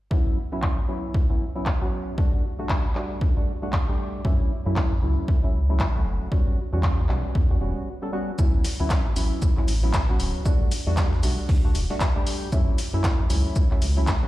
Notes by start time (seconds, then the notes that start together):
0.11 F#3 B3 C#4 E4, kick
0.52 F#3 B3 C#4 E4
0.62 kick, clap
0.88 F#3 B3 C#4 E4
1.14 kick
1.29 F#3 B3 C#4 E4
1.55 F#3 B3 C#4 E4
1.66 kick, clap
1.81 F#3 B3 C#4 F#4
2.17 G3 A3 D4 F#4, kick
2.59 G3 A3 D4 F#4
2.69 kick, clap
2.95 G3 A3 D4 F#4, clap
3.21 kick
3.36 G3 A3 D4 F#4
3.62 G3 A3 D4 F#4
3.73 kick, clap
3.88 G3 A3 D4 G4
4.24 F#2 F#3 A3 C#4 E4, kick
4.66 F#2 F#3 A3 C#4 E4
4.76 kick, clap
5.02 C#2 F#3 A3 C#4 E4
5.28 kick
5.43 F#3 A3 C#4 E4
5.54 C#2
5.69 F#3 A3 C#4 E4
5.80 kick, clap
5.95 F#3 A3 C#4 F#4
6.06 F#1
6.31 G3 B3 C#4 F#4, kick
6.73 E2 G3 B3 C#4 F#4
6.83 kick, clap
7.09 B1 G3 B3 C#4 F#4, clap
7.35 E2, kick
7.50 G3 B3 C#4 F#4
7.61 E1 G3 B3 C#4 F#4
8.02 G3 B3 C#4 A4
8.12 G3 B3 C#4 F#4
8.38 D2 F#3 B3 C#4 E4, kick, shaker
8.64 snare, open hi-hat, shaker
8.80 D2 F#3 B3 C#4 E4
8.90 kick, snare, clap, shaker
9.16 A1 F#3 B3 C#4 E4, open hi-hat, shaker
9.42 kick, shaker
9.57 F#3 B3 C#4 E4, clap
9.68 A1, open hi-hat, shaker
9.83 F#3 B3 C#4 E4
9.94 kick, snare, clap, shaker
10.09 F#3 B3 C#4 F#4
10.20 D1, open hi-hat, shaker
10.45 G3 A3 D4 F#4, kick, shaker
10.71 open hi-hat, shaker
10.87 E2 G3 A3 D4 F#4
10.97 kick, snare, clap, shaker
11.13 snare
11.23 B1 G3 A3 D4 F#4, open hi-hat, shaker
11.49 D2, kick, open hi-hat
11.64 G3 A3 D4 F#4
11.75 E1, open hi-hat, shaker
11.90 G3 A3 D4 F#4, snare
12.00 kick, snare, clap, shaker
12.16 G3 A3 D4 G4
12.27 snare, open hi-hat, shaker
12.52 F#2 F#3 A3 C#4 E4, kick, shaker
12.78 snare, open hi-hat, shaker
12.93 F#2 F#3 A3 C#4 E4
13.04 kick, snare, clap, shaker
13.30 C#2 F#3 A3 C#4 E4, open hi-hat, shaker
13.56 kick, shaker
13.71 F#3 A3 C#4 E4, clap
13.82 C#2, open hi-hat, shaker
13.97 F#3 A3 C#4 E4
14.07 kick, snare, clap, shaker
14.23 F#3 A3 C#4 F#4